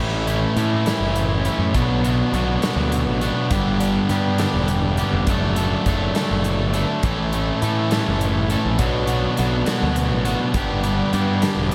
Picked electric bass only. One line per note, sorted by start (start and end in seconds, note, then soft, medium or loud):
0.00 0.45 A1 medium
0.56 0.92 A2 medium
1.00 1.48 F#1 medium
1.58 1.71 F#2 medium
1.74 2.22 B1 loud
2.33 2.57 B1 medium
2.76 3.06 D2 medium
3.06 3.30 A1 medium
3.51 3.98 G1 medium
4.09 4.45 G2 medium
4.54 5.01 E1 medium
5.13 5.25 F1 medium
5.27 5.74 F#1 medium
5.86 6.09 F#1 medium
6.31 6.60 F#1 medium
6.60 6.83 G1 medium
7.03 7.50 A1 medium
7.62 7.98 A2 medium
8.08 8.54 F#1 medium
8.65 8.77 A#1 medium
8.79 9.26 B1 loud
9.39 9.62 B1 medium
9.82 10.11 D2 medium
10.11 10.34 A1 medium
10.54 11.01 G1 medium
11.14 11.49 G2 medium
11.57 11.75 E1 medium